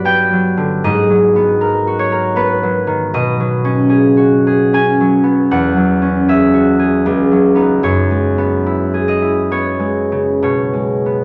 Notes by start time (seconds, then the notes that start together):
Already playing: G2 F#3 F#4 B4 C#5 D5
0.05 B3 G5
0.32 F#3
0.57 D3
0.84 G#2 D#5
1.10 F#3
1.36 B3
1.61 A#4
1.87 F#4
1.99 C#5
2.12 A#4
2.36 B3 B4
2.63 F#3
2.87 D#3
3.14 B2 D#5
3.40 F#3
3.65 C#4
3.89 G#4
4.17 F#4
4.47 G#4
4.73 C#4 G#5
5.00 F#3
5.24 B3
5.51 E2 F#5
5.77 F#3
6.02 C#4
6.28 G#4 E5
6.54 F#4
6.79 G#4
7.06 C#2
7.31 F#3
7.55 B3 D#4
7.83 F#2 C#5
8.11 G#3
8.38 B3
8.66 E4
8.94 G#4
9.08 D#5
9.22 E4
9.51 B3 C#5
9.80 G#3
10.12 C#3
10.42 B2 C#5
10.73 G#3
11.06 B3